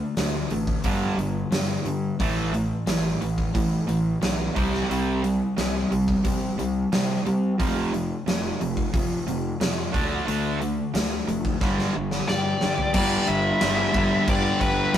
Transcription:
Already playing: D3 A3
0.17 D2 D3 A3, snare, open hi-hat
0.50 A1 D3 A3, open hi-hat
0.67 kick
0.84 G1 G2 D3 G3, kick, open hi-hat
1.17 G1 G2 D3, open hi-hat
1.51 G2 D3, snare, open hi-hat
1.85 G2 D3, open hi-hat
2.19 A1 A2 E3 A3, kick, open hi-hat
2.52 A2 E3, open hi-hat
2.86 A1 A2 E3, snare, open hi-hat
3.21 A1 A2 E3, open hi-hat
3.38 kick
3.54 A2 E3, kick, open hi-hat
3.88 A1 A2 E3, open hi-hat
4.21 B1 A2 E3, snare, open hi-hat
4.56 C2 C3 G3 C4, kick, open hi-hat
4.74 snare
4.88 C2 C3 G3 C4, open hi-hat
5.23 C3 G3, open hi-hat
5.57 C2 C3 G3, snare, open hi-hat
5.91 C2 C3 G3, open hi-hat
6.08 kick
6.25 C3 G3, kick, open hi-hat
6.58 C2 C3 G3, open hi-hat
6.92 C3 G3, snare, open hi-hat
7.25 C3 G3, open hi-hat
7.60 F1 F2 C3 F3, kick, open hi-hat
7.93 F2 C3, open hi-hat
8.26 F1 F2 C3, snare, open hi-hat
8.60 F1 F2 C3, open hi-hat
8.77 kick
8.94 F2 C3, kick, open hi-hat
9.27 F1 F2 C3, open hi-hat
9.60 F2 C3, snare, open hi-hat
9.94 D2 D3 A3 D4, kick, open hi-hat
10.28 D2 D3 A3 D4, open hi-hat
10.61 D3 A3, open hi-hat
10.94 D2 D3 A3, snare, open hi-hat
11.27 F1 D3 A3, open hi-hat
11.45 kick
11.60 G1 G2 D3 G3, kick, snare
11.79 snare
11.93 G1 G2 D3
12.11 snare
12.28 G2 D3 G4 D5, snare
12.61 G2 D3, snare
12.78 floor tom
12.94 G1 G2 D3 G3 G4 D5, kick, crash
13.27 G1 B4 E5, crash
13.61 G1 G2 D3 G3, snare, crash
13.94 G1 G2 D3 G3, kick, crash
14.27 G1 G2 D3 G3 G4 D5, kick, crash
14.61 G1 G4 B4, kick, crash
14.94 G1 G2 D3, snare, crash

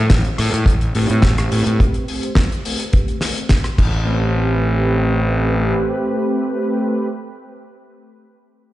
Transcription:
0.10 A1, kick, snare, closed hi-hat
0.25 closed hi-hat
0.38 A2, cross-stick, open hi-hat
0.53 A2, closed hi-hat
0.66 A1, kick, closed hi-hat
0.81 closed hi-hat
0.95 A2 A3 C4 G4 B4, open hi-hat
1.10 A2, closed hi-hat
1.22 A1, kick, snare, closed hi-hat
1.37 A3 C4 G4 B4, cross-stick, closed hi-hat
1.52 A2, open hi-hat
1.66 A2, closed hi-hat
1.80 kick, closed hi-hat
1.94 closed hi-hat
2.08 A3 C4, open hi-hat
2.23 closed hi-hat
2.35 A3 B4, kick, snare, closed hi-hat
2.52 closed hi-hat
2.64 A3 C4 G4 B4, open hi-hat
2.80 closed hi-hat
2.93 kick, closed hi-hat
3.08 closed hi-hat
3.21 A3 C4 G4, snare, open hi-hat
3.36 closed hi-hat
3.49 kick, snare, closed hi-hat
3.64 cross-stick, closed hi-hat
3.77 A1 A3, kick, crash

